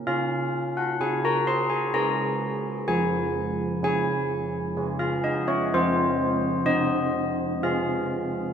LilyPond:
\new Staff \with { instrumentName = "Church bells" } { \time 3/4 \key des \major \tempo 4 = 63 << { f''8. ges''16 aes''16 bes''16 c'''16 aes''16 bes''4 | aes''4 aes''4~ aes''16 f''16 ees''16 des''16 | \key f \phrygian c''4 ees''4 f''4 | } \\ { des'4 des'4 <des' aes'>4 | f4 des'4 <des' aes'>4 | f4 c'4 <c' aes'>4 | } >> }